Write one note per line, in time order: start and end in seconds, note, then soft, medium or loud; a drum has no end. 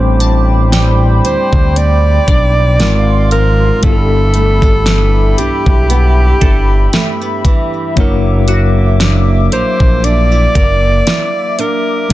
0.00 1.21 A1 loud
0.00 2.80 A2 medium
0.00 2.75 G3 medium
0.00 0.21 A3 medium
0.00 2.75 C4 medium
0.00 0.24 D4 medium
0.00 2.76 D4 medium
0.00 2.77 E4 medium
0.00 2.76 C5 medium
0.00 2.80 C5 medium
0.00 2.76 G5 medium
0.00 2.76 B5 medium
0.00 2.76 D6 loud
0.20 1.76 C4 medium
0.20 3.27 A5 medium
0.20 closed hi-hat medium
0.72 2.91 G3 medium
0.72 3.27 G5 medium
0.72 snare loud
0.72 closed hi-hat medium
1.24 1.36 D2 soft
1.24 2.27 D4 medium
1.24 1.79 C5 loud
1.24 closed hi-hat medium
1.53 2.19 D2 medium
1.53 kick medium
1.76 2.91 C4 medium
1.76 3.31 D5 loud
1.76 closed hi-hat medium
2.28 2.82 B1 medium
2.28 2.91 D4 medium
2.28 3.27 D5 medium
2.28 kick loud
2.28 closed hi-hat medium
2.79 3.72 G#1 loud
2.79 3.83 G#2 medium
2.79 3.83 G#3 medium
2.79 3.82 G#3 medium
2.79 3.83 C4 medium
2.79 3.83 D#4 medium
2.79 3.84 F4 medium
2.79 3.84 A#4 medium
2.79 3.82 F5 medium
2.79 3.82 C6 medium
2.79 snare loud
2.79 closed hi-hat medium
3.31 3.94 F3 medium
3.31 3.84 A#4 loud
3.31 closed hi-hat medium
3.82 5.34 G1 loud
3.82 7.97 G2 medium
3.82 7.92 G3 medium
3.82 7.93 B3 medium
3.82 7.93 D4 medium
3.82 7.94 E4 medium
3.82 7.93 G4 medium
3.82 5.40 A4 loud
3.82 12.07 E5 medium
3.82 7.93 B5 medium
3.82 kick loud
3.82 closed hi-hat medium
3.86 3.92 G4 medium
3.93 7.98 A4 medium
4.34 4.63 A3 medium
4.34 closed hi-hat medium
4.62 5.89 B3 medium
4.62 kick medium
4.86 7.45 E3 medium
4.86 snare loud
4.86 closed hi-hat medium
5.38 5.50 B1 soft
5.38 6.42 D4 medium
5.38 7.45 G4 medium
5.38 closed hi-hat medium
5.66 6.33 B1 loud
5.66 kick medium
5.90 6.93 B3 medium
5.90 closed hi-hat medium
6.41 6.87 G1 medium
6.41 8.48 D4 medium
6.41 8.44 A4 medium
6.41 kick loud
6.41 closed hi-hat medium
6.93 7.21 A3 medium
6.93 snare loud
6.93 closed hi-hat medium
7.21 8.08 B3 medium
7.45 7.97 E3 medium
7.45 kick loud
7.45 closed hi-hat medium
7.96 9.48 F#1 loud
7.96 12.06 F#3 medium
7.96 12.10 F#3 medium
7.96 12.07 A#3 medium
7.96 12.07 D4 medium
7.96 12.08 E4 medium
7.96 12.07 D6 medium
7.96 kick loud
7.96 closed hi-hat medium
8.00 12.08 A#4 medium
8.48 10.03 E4 medium
8.48 11.72 F#4 medium
8.48 closed hi-hat medium
9.00 10.02 D4 medium
9.00 snare loud
9.00 closed hi-hat medium
9.52 9.63 A#1 soft
9.52 10.54 A#4 medium
9.52 10.06 C5 loud
9.52 closed hi-hat medium
9.80 10.47 A#1 medium
9.80 kick medium
10.04 10.31 D4 medium
10.04 11.62 D5 loud
10.04 closed hi-hat medium
10.31 11.06 E4 medium
10.55 11.01 F#1 loud
10.55 12.13 A#4 medium
10.55 kick loud
10.55 closed hi-hat medium
11.07 12.13 E4 medium
11.07 snare loud
11.07 closed hi-hat medium
11.59 12.13 D4 medium
11.59 12.11 A#4 medium
11.59 closed hi-hat medium
12.09 12.13 G3 medium